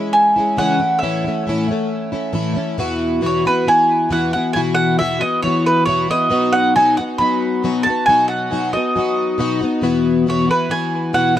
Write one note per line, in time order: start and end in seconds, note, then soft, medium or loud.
0.00 0.37 G#3 soft
0.00 0.37 C#4 medium
0.00 0.36 E4 medium
0.13 0.58 G#5 loud
0.36 0.58 G#3 soft
0.36 0.58 C#4 soft
0.36 0.58 E4 medium
0.57 0.79 C#3 medium
0.57 0.80 E3 medium
0.57 0.80 G#3 medium
0.57 0.80 C#4 medium
0.57 0.78 E4 medium
0.57 0.99 F#5 loud
0.79 1.02 A3 soft
0.79 1.02 C#4 soft
0.79 1.02 E4 medium
0.99 1.24 A2 medium
0.99 2.29 E5 medium
1.03 1.24 E3 medium
1.03 1.25 A3 medium
1.03 1.24 C#4 medium
1.03 1.23 E4 medium
1.24 1.46 A3 soft
1.24 1.47 C#4 medium
1.24 1.46 E4 medium
1.47 1.68 A2 medium
1.47 1.69 E3 medium
1.47 1.69 A3 medium
1.47 1.70 C#4 medium
1.47 1.67 E4 medium
1.68 2.13 A3 medium
1.68 2.12 C#4 soft
1.68 2.11 E4 medium
2.12 2.32 A3 soft
2.12 2.33 C#4 medium
2.12 2.34 E4 medium
2.33 2.55 A2 medium
2.33 2.56 E3 medium
2.33 2.56 A3 medium
2.33 2.55 C#4 medium
2.33 2.53 E4 medium
2.54 2.79 A3 soft
2.54 2.78 C#4 medium
2.54 2.77 E4 medium
2.78 3.20 E2 medium
2.78 3.20 B2 medium
2.78 3.21 E3 medium
2.78 3.22 B3 loud
2.78 3.21 E4 medium
2.78 3.23 F#4 loud
3.21 3.44 E2 medium
3.21 3.44 B2 medium
3.21 3.44 E3 medium
3.21 3.44 B3 medium
3.21 3.44 E4 medium
3.21 3.44 F#4 medium
3.26 3.46 C#5 medium
3.45 3.64 E3 soft
3.45 3.65 B3 soft
3.45 3.66 E4 soft
3.45 3.67 F#4 medium
3.45 3.68 B4 medium
3.65 4.09 E3 medium
3.65 4.10 B3 medium
3.65 4.11 E4 medium
3.65 4.12 F#4 medium
3.65 4.12 G#5 loud
4.09 4.32 E2 medium
4.09 4.33 B2 medium
4.09 4.33 E3 medium
4.09 4.33 B3 medium
4.09 4.33 E4 medium
4.09 4.33 F#4 medium
4.09 4.32 F#5 medium
4.33 4.55 B3 soft
4.33 4.55 E4 medium
4.33 4.55 F#4 medium
4.33 4.53 F#5 loud
4.37 4.55 E3 soft
4.53 4.97 E2 medium
4.53 4.98 B2 medium
4.53 4.99 E3 medium
4.53 5.00 B3 medium
4.53 5.00 E4 medium
4.53 5.01 F#4 medium
4.53 4.59 G#5 medium
4.75 4.98 F#5 loud
4.98 5.21 E2 medium
4.98 5.21 B2 medium
4.98 5.21 E3 medium
4.98 5.20 B3 medium
4.98 5.19 E4 medium
4.98 5.18 F#4 medium
4.98 5.21 E5 medium
5.19 5.42 E3 soft
5.19 5.43 B3 soft
5.19 5.42 E4 soft
5.19 5.42 F#4 medium
5.19 5.42 D#5 loud
5.42 5.87 E3 medium
5.42 5.88 B3 medium
5.42 5.87 E4 medium
5.42 5.65 C#5 medium
5.47 5.88 F#4 medium
5.66 5.85 B4 medium
5.86 6.09 E2 medium
5.86 6.09 B2 medium
5.86 6.09 E3 medium
5.86 6.10 B3 medium
5.86 6.09 E4 medium
5.86 6.07 F#4 medium
5.86 6.09 C#5 medium
6.08 6.29 E3 soft
6.08 6.29 B3 soft
6.08 6.31 E4 medium
6.08 6.31 F#4 medium
6.08 6.55 D#5 loud
6.30 6.74 B2 medium
6.30 6.75 F#3 medium
6.30 6.76 B3 medium
6.30 6.75 D#4 medium
6.30 6.77 F#4 medium
6.53 6.75 F#5 loud
6.76 6.97 B2 medium
6.76 6.97 F#3 medium
6.76 6.98 B3 medium
6.76 6.98 D#4 medium
6.76 6.97 F#4 medium
6.76 6.97 G#5 loud
6.97 7.19 B3 soft
6.97 7.20 D#4 soft
6.97 7.20 F#4 soft
6.97 7.03 F#5 loud
7.18 7.63 F#3 medium
7.18 7.63 B3 medium
7.18 7.64 D#4 medium
7.18 7.64 F#4 medium
7.18 7.83 B5 loud
7.63 7.85 B2 medium
7.63 7.85 F#3 medium
7.63 7.85 B3 medium
7.63 7.86 D#4 medium
7.63 7.85 F#4 medium
7.83 8.08 F#4 medium
7.83 8.05 A5 loud
7.88 8.07 B3 soft
7.88 8.08 D#4 soft
8.06 8.50 B2 medium
8.06 8.51 F#3 medium
8.06 8.51 B3 medium
8.06 8.51 D#4 medium
8.06 8.53 F#4 medium
8.06 8.28 G#5 loud
8.28 8.69 F#5 loud
8.51 8.73 B2 medium
8.51 8.73 F#3 medium
8.51 8.73 B3 medium
8.51 8.74 D#4 medium
8.51 8.72 F#4 medium
8.73 8.95 B3 soft
8.73 8.96 D#4 soft
8.73 8.95 F#4 medium
8.73 9.57 D#5 medium
8.96 9.38 F#3 medium
8.96 9.39 B3 medium
8.96 9.38 D#4 medium
8.96 9.40 F#4 medium
9.38 9.60 B2 medium
9.38 9.61 F#3 medium
9.38 9.61 B3 medium
9.38 9.61 D#4 loud
9.38 9.59 F#4 medium
9.61 9.82 B3 soft
9.61 9.83 D#4 medium
9.61 9.82 F#4 medium
9.81 10.25 E2 medium
9.81 10.26 B2 medium
9.81 10.27 E3 medium
9.81 10.28 B3 loud
9.81 10.28 E4 loud
9.81 10.27 F#4 medium
10.26 10.49 E2 medium
10.26 10.49 B2 medium
10.26 10.49 E3 medium
10.26 10.48 B3 medium
10.26 10.47 E4 medium
10.26 10.45 F#4 medium
10.26 10.50 C#5 medium
10.47 10.68 E3 soft
10.47 10.69 B3 soft
10.47 10.70 E4 soft
10.47 10.70 F#4 medium
10.51 10.73 B4 medium
10.69 11.13 E3 medium
10.69 11.14 B3 medium
10.69 11.14 E4 medium
10.69 11.13 F#4 medium
10.69 11.14 G#5 loud
11.13 11.36 E2 medium
11.13 11.36 B2 medium
11.13 11.36 E3 medium
11.13 11.36 B3 medium
11.13 11.35 E4 medium
11.13 11.33 F#4 medium
11.13 11.36 F#5 loud
11.34 11.40 E4 soft
11.34 11.40 F#4 medium